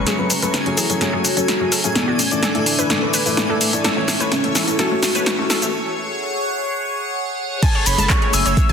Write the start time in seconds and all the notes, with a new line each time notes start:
0.06 F#3 A3 C#4 F#4 G#4 A4 C#5 G#5, snare, closed hi-hat, shaker
0.19 F#3 A3 C#4 B4
0.30 F#1 C#4, open hi-hat, shaker
0.42 F#1 F#3 A3 C#4 A4 B4, closed hi-hat, shaker
0.54 C#4, snare, closed hi-hat, shaker
0.66 F#3 A3 C#4 G#4, closed hi-hat
0.77 F#1 E4 G#4, open hi-hat, shaker
0.90 F#3 A3 C#4 G#4, closed hi-hat, shaker
1.01 F#3 A3 C#4 F#4 G#4, snare, closed hi-hat, shaker
1.13 F#3 A3 C#4 G#4 A4
1.25 F#1 C#4, open hi-hat, shaker
1.37 F#3 A3 C#4 A4, closed hi-hat, shaker
1.48 E4, snare, closed hi-hat, shaker
1.60 F#3 A3 C#4 G#4
1.72 F#1 A4, open hi-hat, shaker
1.84 F#1 F#3 A3 C#4 G#4, closed hi-hat, shaker
1.95 E3 A3 B3 D4 A4 D5 E5 D6, snare, closed hi-hat, shaker
2.08 E3 A3 D4 F#4 D5
2.19 A3 C#4, open hi-hat, shaker
2.31 E3 A3 D4 D5, closed hi-hat, shaker
2.43 D4 A4, snare, closed hi-hat, shaker
2.55 E3 A3 D4 A4, closed hi-hat
2.66 F#1 A3, open hi-hat, shaker
2.78 E3 A3 D4 A4 B4, closed hi-hat, shaker
2.90 E3 A3 D4 A4, snare, closed hi-hat, shaker
3.02 E3 A3 D4 B4
3.14 F#1 B4, open hi-hat, shaker
3.26 E3 A3 D4 B4, open hi-hat, shaker
3.37 A3, snare, closed hi-hat, shaker
3.49 E3 A3 D4 A4
3.61 A3, open hi-hat, shaker
3.73 E3 A3 D4 A4, closed hi-hat, shaker
3.84 E3 A3 C#4 A4 C#5 C#6, snare, closed hi-hat, shaker
3.97 E3 A3 C#4 C#5
4.08 A3, snare, open hi-hat, shaker
4.20 E3 A3 C#4 B4 C#5, closed hi-hat, shaker
4.32 A3 C#4, snare, closed hi-hat, shaker
4.44 E3 A3 C#4 A4, closed hi-hat
4.55 E4 A4, snare, open hi-hat, shaker
4.68 E3 A3 C#4 A4, closed hi-hat, shaker
4.79 E3 A3 C#4 F#4 A4, snare, closed hi-hat, shaker
4.91 E3 A3 C#4 C#5
5.03 A3, snare, open hi-hat, shaker
5.15 E3 A3 C#4 B4 C#5, closed hi-hat, shaker
5.26 A3, snare, closed hi-hat, shaker
5.38 E3 A3 C#4 A4
5.50 A4, snare, open hi-hat, shaker
5.62 E3 A3 C#4 A4, closed hi-hat, shaker
5.73 G#4 C#5 F#5 C#6
7.62 F#3 A3 C#4 G#4 A4 G#5 A5 G#6, kick, closed hi-hat, crash, ride, shaker
7.75 C#5
7.86 F#1 C#5 B5, open hi-hat, ride, shaker
7.98 F#1 A5, closed hi-hat, high bongo, high conga, shaker
8.10 C#5 C#6, kick, clap, closed hi-hat, shaker
8.22 C#5, closed hi-hat
8.33 F#1 G#5 E6, open hi-hat, ride, shaker
8.46 F#1 C#5, closed hi-hat, shaker
8.57 C#5, kick, closed hi-hat, ride, shaker
8.69 G#5, high bongo